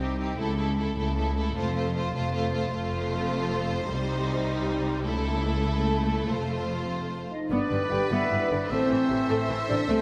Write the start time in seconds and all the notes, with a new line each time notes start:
Already playing: C2
0.00 C4 D#4 G4
0.19 C4 D#4 G4
0.38 C#2 A3 E4 A4
0.57 A3 E4 A4
0.77 A3 E4 A4
0.96 C#2 A3 E4 A4
1.16 A3 E4 A4
1.36 A3 E4 A4
1.56 F1 F2 A3 F4 C5
1.76 A3 F4 C5
1.95 A3 F4 C5
2.14 F1 F2 A3 F4 C5
2.34 A3 F4 C5
2.53 A3 F4 C5
2.72 F1 F2 A3 F4 C5
3.90 C2 G3 D#4
5.06 C#2 A3 E4 A4
6.28 F1 F2 F4 C5
7.30 D#4 D#5
7.50 G1 G2 D3 B3 D4 B4 D5
7.71 G1 G2 G3
7.90 G1 G2 D3 G4 G5
8.11 G1 G2 B3 E4 E5
8.30 G1 G2 G3
8.50 G1 G2 D3 D4 D5
8.69 A1 A2 E3 A3 C4 A4 C5 E5
8.89 A1 A2 E3
9.09 A1 A2 C3
9.28 A1 A2 A3
9.49 A1 A2 E3
9.68 A1 A2 C3 D4 D5
9.88 C2 C3 E3 A3 C4 C5